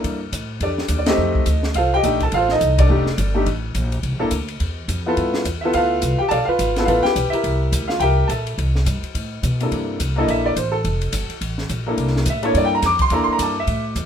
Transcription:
Already playing: A#3 D4 E4 A4
0.04 G2, kick, ride
0.32 A2, kick, hi-hat pedal, ride
0.60 F2 D4 G4 A4 D5, kick, ride
0.78 snare
0.88 D#2, kick, hi-hat pedal, ride
0.99 D5
1.06 A3 C4 D#4 G4 A4 D#5, snare, ride
1.18 F2
1.35 kick
1.46 D2, hi-hat pedal, ride
1.63 snare
1.74 C2 F4 A4 C5 F5, kick, ride
1.94 G4 D#5 G5
2.03 A#1 A3 D4 D#4 G4, kick, hi-hat pedal, ride
2.20 A4 A5, kick, ride
2.32 A1 F5, ride
2.36 F4 A4 C5
2.49 A4 D#5, snare
2.54 D#4
2.61 C2, kick, hi-hat pedal, ride
2.78 D4 A4 D5, kick, ride
2.89 F1 A3 D4 D#4 G4
3.06 snare
3.18 G1, kick, hi-hat pedal, ride
3.34 A3 D4 D#4 G4
3.46 A1, kick, ride
3.75 A#1, kick, hi-hat pedal, ride
3.92 ride
4.03 C2, kick, ride
4.12 A#1
4.19 G1 A#3 D4 E4 A4
4.31 D2, kick, hi-hat pedal, ride
4.48 ride
4.60 E2, kick, ride
4.88 F2, kick, hi-hat pedal, ride
5.06 B3 E4 F4 A4
5.17 G2, kick, ride
5.34 snare
5.45 E2, kick, hi-hat pedal, ride
5.61 B3 E4 F4 E5
5.65 A4
5.73 D2 F4 A4 B4 F5, kick, ride
6.02 C2, kick, hi-hat pedal, ride
6.18 G4 G5
6.29 B1 A4 D5 F5 A5, kick, ride
6.45 F4 B4 F5, muted upright bass stroke
6.59 G#1, kick, hi-hat pedal, ride
6.76 B3 E4 F4 A4, snare, ride
6.85 A1 F4 A4 B4 F5, kick, ride
7.03 G4 B4 G5, muted upright bass stroke, snare
7.16 B1, kick, hi-hat pedal, ride
7.30 E4 G4 A#4 E5, muted upright bass stroke, ride
7.44 C2, kick, ride
7.72 D2, kick, hi-hat pedal, ride
7.88 F4 F5, snare
8.00 C2 G4 A#4 E5 G5, kick, ride
8.27 A#1 A4 E5 A5, kick, hi-hat pedal, ride
8.47 ride
8.58 C2, kick, ride
8.75 snare
8.86 G2, kick, hi-hat pedal, ride
9.03 muted upright bass stroke, ride
9.14 A2, kick, ride
9.43 B2, kick, hi-hat pedal, ride
9.60 C3 A#3 D4 E4 A4, ride
9.72 G2, kick, ride
10.00 C2, kick, hi-hat pedal, ride
10.16 A#3 D4 E4 A4 D#5
10.28 A#1 E5, kick, ride
10.46 D5
10.56 A1 C5, kick, hi-hat pedal, ride
10.72 A4
10.84 F1, kick, ride
11.01 ride
11.13 G1, kick, hi-hat pedal, ride
11.29 muted upright bass stroke, ride
11.41 A1, kick, ride
11.58 snare
11.69 A#1, kick, hi-hat pedal, ride
11.86 A#3 D4 E4 A4
11.97 C2, kick, ride
12.07 snare
12.16 snare
12.26 A2, kick, hi-hat pedal, ride
12.30 E5
12.43 A#3 D4 E4 A4 C#5, ride
12.54 G2 D5, kick, ride
12.65 G5
12.75 A#5
12.82 F2 D6, kick, snare, hi-hat pedal, ride
12.99 C6, kick, ride
13.10 E2 A#3 D4 E4 A4 A#5, kick, ride
13.24 C6, muted upright bass stroke
13.32 A#5
13.39 G2 A5, kick, hi-hat pedal, ride
13.60 E5
13.67 A2, kick, ride
13.95 E2, kick, hi-hat pedal, ride

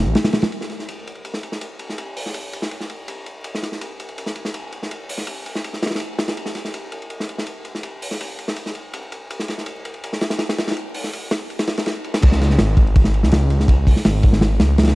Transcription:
0.06 A1
0.15 snare, ride
0.24 snare, ride
0.33 snare, ride
0.42 snare, ride
0.52 ride
0.61 snare
0.70 snare, ride
0.79 snare
0.89 ride
1.07 ride
1.15 ride
1.25 ride
1.34 snare
1.43 ride
1.52 snare
1.61 ride
1.79 ride
1.89 snare
1.98 ride
2.17 open hi-hat
2.26 snare
2.34 ride
2.53 ride
2.62 snare
2.71 ride
2.81 snare
2.90 ride
3.08 ride
3.26 ride
3.44 ride
3.54 snare
3.63 snare, ride
3.72 snare
3.81 ride
4.00 ride
4.09 ride
4.18 ride
4.26 snare
4.36 ride
4.45 snare
4.54 ride
4.72 ride
4.83 snare
4.91 ride
5.09 open hi-hat
5.18 snare
5.27 ride
5.46 ride
5.55 snare
5.64 ride
5.73 snare
5.83 snare, ride
5.86 snare, ride
5.91 snare, ride
5.95 snare, ride
6.00 ride
6.19 snare, ride
6.28 snare, ride
6.37 ride
6.46 snare
6.55 snare, ride
6.65 snare
6.74 ride
6.92 ride
7.02 ride
7.10 ride
7.20 snare
7.29 ride
7.38 snare
7.46 ride
7.65 ride
7.75 snare
7.83 ride
8.02 open hi-hat
8.11 snare
8.21 ride
8.39 ride
8.48 snare
8.56 ride
8.66 snare
8.75 ride
8.93 ride
9.12 ride
9.30 ride
9.39 snare
9.48 snare, ride
9.58 snare
9.66 ride
9.85 ride
9.94 ride
10.04 ride
10.13 snare
10.21 snare, ride
10.30 snare, ride
10.39 snare, ride
10.49 snare, ride
10.58 snare, ride
10.67 snare, ride
10.71 snare, ride
10.77 ride
10.94 open hi-hat
11.04 snare
11.13 ride
11.31 snare, ride
11.50 ride
11.59 snare, ride
11.67 snare, ride
11.77 snare, ride
11.86 snare, ride
12.04 ride
12.14 snare, ride
12.22 C#2, kick, crash, ride
12.32 snare
12.41 snare, ride
12.50 snare
12.59 G#1, snare, ride
12.77 kick, ride
12.87 ride
12.95 kick, ride
13.04 snare
13.14 ride
13.23 C#2, snare
13.32 snare, ride
13.50 ride
13.60 snare
13.68 kick, ride
13.87 kick, open hi-hat
13.96 snare
14.05 G#1, snare, ride
14.23 kick, ride
14.33 snare
14.41 G#1, snare, ride
14.60 C#2, snare, ride
14.78 C#2, snare, ride
14.83 snare, ride
14.88 snare, ride

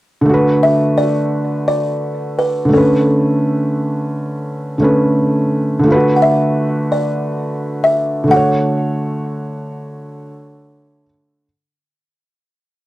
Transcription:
0.21 D3
0.26 A3 F#4
0.34 B4
0.63 E5
0.98 D5
1.68 D5
2.39 B4
2.65 D3 A3
2.73 C#4 A4
2.77 B4
4.78 D3 A3
4.82 C#4 B4
5.79 D3
5.84 A3 F4
5.92 F#4 B4
6.16 F#5
6.22 E5
6.92 D5
7.84 E5
8.24 D3
8.28 A3 F#4 F#5
8.36 C#5

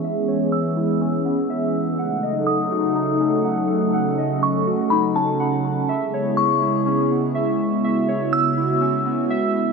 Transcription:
Already playing: E3 G#3 B3 C#4 E4 G#4
0.04 E5
0.28 C#5
0.52 E6
0.77 E4
1.01 C#4
1.25 B3
1.50 E5
1.98 C#3 F#3 A3 D#4 A4 F#5
2.23 D#5
2.47 D#6
2.71 F#4
2.95 D#4
3.20 C#4
3.45 F#5
3.94 C#4 F#5
4.18 D#5
4.43 C#6
4.67 F#4
4.90 D#4 B5
5.16 C#4 A5
5.40 F#5
5.89 G#3 B3 E4 G#4 E5
6.14 C#5
6.37 C#6
6.62 E4
6.86 C#4
7.11 B3
7.35 E5
7.84 F#4 E5
8.08 C#5
8.33 E6
8.57 E4
8.81 C#4
9.06 B3
9.30 E5

